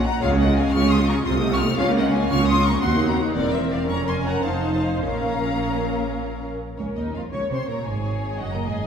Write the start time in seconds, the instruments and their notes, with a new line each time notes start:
0.04 violin section F#5 A#5
0.21 double bass section C#2, cello section C#3, viola section G#3 F4, violin section C#5 F5
0.34 viola section C#4 G#4
0.39 violin section D#5 F#5
0.47 viola section G#3 F4
0.56 viola section C#4 G#4, violin section F5 G#5
0.72 double bass section C#2, cello section C#3, viola section G#3 F4, violin section C#6 F6
0.85 viola section C#4 G#4
0.90 violin section C6 D#6
0.97 viola section G#3 F4
1.09 viola section C#4 G#4, violin section A#5 C#6
1.24 double bass section C2, cello section C3, viola section C4 F4, violin section C6 D#6
1.37 viola section A3 D#4
1.51 viola section C4 F4, violin section C#6 F6
1.64 viola section A3 D#4
1.76 double bass section C#2, cello section C#3, viola section C#4 F4, violin section C#5 F5
1.89 viola section A#3 C#4
1.97 violin section D#5 F#5
2.02 viola section C#4 F4
2.13 viola section A#3 C#4, violin section F5 G#5
2.30 double bass section C#2, cello section C#3, viola section C#4 F4, violin section C#6 F6
2.42 viola section A#3 C#4
2.47 violin section C6 D#6
2.55 viola section C#4 F4
2.65 viola section A#3 C#4, violin section A#5 C#6
2.82 cello section D#2, double bass section D#2, viola section C4 F#4, violin section F#5 C6
2.95 viola section A#3 D#4
3.07 viola section C4 F#4, violin section F#5 A#5
3.21 viola section A#3 D#4
3.34 double bass section E1, cello section E2, viola section C4 A#4, violin section A#4 D5
3.53 violin section C5 E5
3.72 violin section D5 F5
3.88 double bass section F1, cello section F2, viola section C#4 A#4, violin section A#5 C#6
4.08 violin section G#5 C6
4.26 violin section A#5
4.30 violin section F#5
4.44 double bass section F1, cello section F2, viola section D#4 C5, violin section F5 A5
4.74 violin section F5 A5
5.02 double bass section A#1, cello section A#2, viola section C#4 A#4, violin section F5 A#5
6.77 cello section C#2, double bass section C#2, violin section C#4 C#5, viola section A#4
6.96 cello section D#2, violin section D#4 D#5
7.14 cello section F2, violin section F4 F5
7.32 double bass section C#2, cello section C#3, viola section C#5, violin section C#5 C#6
7.50 cello section C3, violin section C5 C6
7.67 cello section A#2, violin section A#4 A#5
7.85 double bass section G#1, cello section G#2, violin section G#4 G#5
8.39 double bass section F#1, cello section F#2, violin section F#4 F#5, viola section D#5
8.53 cello section A#2, violin section A#4 A#5
8.66 double bass section G#1, cello section G#2, violin section G#4 G#5